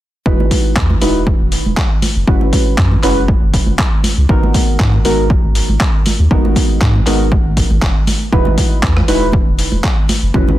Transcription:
0.26 analog synth bass E1, synth stab G#3 D#4 E4 F#4 B4, kick
0.40 high conga
0.51 kick, open hi-hat
0.76 analog synth bass E2, kick, clap
0.90 high conga
1.02 analog synth bass E1, synth stab G#3 D#4 E4 F#4 B4, open hi-hat
1.27 kick, high conga
1.40 analog synth bass E1
1.52 open hi-hat
1.66 analog synth bass E1, high conga
1.77 kick, clap
2.02 open hi-hat, high conga
2.16 analog synth bass F#1
2.28 analog synth bass F#1, synth stab G#3 C#4 E4 F#4 B4, kick
2.41 high conga
2.53 kick, open hi-hat
2.78 analog synth bass F#2, kick, clap
2.92 high conga
3.03 analog synth bass F#1, synth stab G#3 C#4 E4 F#4 B4, clap, open hi-hat
3.28 kick, high conga
3.42 analog synth bass F#1
3.54 kick, open hi-hat
3.66 analog synth bass F#1, high conga
3.79 kick, clap
4.04 open hi-hat, high conga
4.18 analog synth bass C#2
4.29 analog synth bass G#1, synth stab G#3 B3 D#4 F#4 A#4, kick
4.43 high conga
4.54 kick, open hi-hat
4.80 analog synth bass G#2, kick, clap
4.93 high conga
5.05 analog synth bass G#1, synth stab G#3 B3 D#4 F#4 A#4, open hi-hat
5.30 kick, high conga
5.44 analog synth bass G#1
5.55 open hi-hat
5.69 analog synth bass G#1, high conga
5.80 kick, clap
6.06 open hi-hat, high conga
6.19 analog synth bass D#2
6.31 analog synth bass G#1, synth stab G#3 B3 D#4 F#4 A#4, kick
6.45 high conga
6.56 kick, open hi-hat
6.81 analog synth bass G#2, kick, clap
6.95 high conga
7.07 analog synth bass G#1, synth stab G#3 B3 D#4 F#4 A#4, clap, open hi-hat
7.32 kick, high conga
7.45 analog synth bass G#1
7.57 kick, open hi-hat
7.70 analog synth bass G#1, high conga
7.82 analog synth bass F#1, kick, clap
8.07 open hi-hat, high conga
8.33 analog synth bass E1, synth stab G#3 D#4 E4 F#4 B4, kick, low conga
8.45 high conga, low conga
8.58 kick, open hi-hat
8.83 analog synth bass E2, kick, clap
8.97 cross-stick, high conga
9.08 analog synth bass E1, synth stab G#3 D#4 E4 F#4 B4, open hi-hat
9.32 kick, high conga
9.47 analog synth bass E1
9.59 open hi-hat
9.72 analog synth bass E1, high conga
9.84 kick, clap
10.09 open hi-hat, high conga
10.23 analog synth bass F#1
10.34 analog synth bass F#1, synth stab G#3 C#4 E4 F#4 B4, kick, low conga
10.48 high conga, low conga

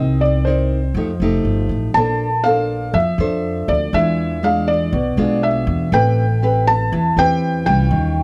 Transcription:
Already playing: upright bass C2, nylon-string guitar C4 D#4 A#4, felt piano D#5
0.21 felt piano D5
0.45 nylon-string guitar D#4 A#4 D5, felt piano C5
0.94 upright bass F2, nylon-string guitar F3 A3 D#4 G4
1.20 upright bass F1, nylon-string guitar A3 D#4 G4
1.45 upright bass G1
1.69 upright bass A1
1.94 upright bass A#1, nylon-string guitar A#3 D4 A4 C5, felt piano A5
2.44 nylon-string guitar D4 A4 C5, felt piano F5
2.94 upright bass F2, nylon-string guitar F3, felt piano E5
3.18 upright bass F2, nylon-string guitar D4 A4 C5
3.68 upright bass D2, felt piano D5
3.93 upright bass E2, nylon-string guitar E3 G#3 D4 F4, felt piano E5
4.43 nylon-string guitar G#3 D4 F4, felt piano F5
4.68 felt piano D5
4.93 upright bass B1, nylon-string guitar B2
5.17 upright bass B1, nylon-string guitar G#3 D4 F4
5.43 felt piano E5
5.67 upright bass E2
5.92 upright bass A1, nylon-string guitar A3 C4 G4 B4, felt piano G5
6.42 nylon-string guitar C4 G4 B4
6.67 felt piano A5
6.92 upright bass E2, nylon-string guitar E3
7.17 upright bass E2, nylon-string guitar C4 G4 B4, felt piano G5
7.66 upright bass C2, nylon-string guitar G3 C#4 F4, felt piano G5
7.91 upright bass D#2, nylon-string guitar D#3

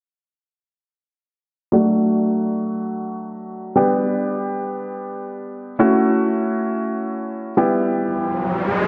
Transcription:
1.72 grand piano F#3 A3 D4 F#4
3.76 grand piano G3 B3 D4 G4
5.79 grand piano A3 C#4 E4 F#4
7.57 grand piano G3 B3 E4 G4
7.83 riser

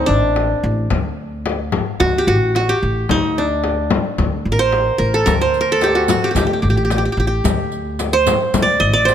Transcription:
Already playing: upright bass D2, qanun A#3 C4 D#4
0.06 upright bass A1, qanun D4
0.36 frame drum
0.63 upright bass A1
0.90 upright bass D2, frame drum
1.46 frame drum
1.72 frame drum
2.00 upright bass D2, qanun F#4, frame drum
2.18 qanun G4
2.27 upright bass A1, qanun F#4
2.55 qanun F#4, frame drum
2.69 qanun G4
2.83 upright bass A1
3.09 upright bass D2, qanun D#4, frame drum
3.38 qanun D4
3.64 frame drum
3.90 frame drum
4.18 upright bass D2, frame drum
4.45 upright bass A1
4.52 qanun A#4
4.59 qanun C5
4.72 frame drum
4.98 upright bass A1, qanun A#4
5.14 qanun A4
5.26 upright bass D2, qanun A#4, riq, frame drum
5.41 qanun C5
5.54 riq
5.61 qanun A#4
5.72 qanun A4
5.81 qanun G4, riq, frame drum
5.95 qanun F#4
6.08 qanun F#4, riq, frame drum
6.24 qanun G4
6.31 qanun G4
6.35 upright bass D2, qanun G4, riq, frame drum
6.47 qanun G4
6.53 qanun G4
6.62 upright bass A1, qanun G4
6.70 qanun G4
6.77 qanun G4
6.85 qanun G4
6.90 qanun G4, riq, frame drum
6.98 qanun G4
7.05 qanun G4
7.12 qanun G4
7.17 upright bass A1, qanun G4
7.27 qanun G4
7.44 upright bass D2, riq, frame drum
7.72 riq
7.99 riq, frame drum
8.13 qanun C5
8.27 riq, frame drum
8.54 upright bass D2, riq, frame drum
8.62 qanun D5
8.80 upright bass A1, qanun D#5
8.93 qanun D5
9.05 qanun C5, riq, frame drum

